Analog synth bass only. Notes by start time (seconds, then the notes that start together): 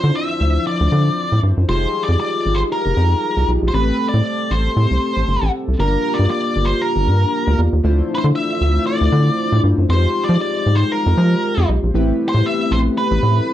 0.04 D3
0.41 D2
0.81 D2
0.92 D3
1.32 A2
1.43 G2
1.57 F#2
1.69 F1
2.09 F2
2.46 G#1
2.86 F1
2.97 F2
3.37 C2
3.48 B1
3.62 A#1
3.74 A1
4.14 A2
4.51 A1
4.77 A2
4.91 C2
5.17 A1
5.28 G1
5.42 A1
5.68 C2
5.79 G1
6.19 G2
6.56 G1
6.96 G1
7.07 G2
7.47 D2
7.59 E2
7.73 D#2
7.84 D2
8.24 D3
8.61 D2
9.01 D2
9.12 D3
9.52 A2
9.64 G2
9.78 F#2
9.89 F2
10.29 F3
10.66 G#2
11.06 F2
11.17 F3
11.58 F2
11.69 B1
11.83 A#1
11.94 A1
12.34 A2
12.71 A#1
13.11 A1
13.23 A2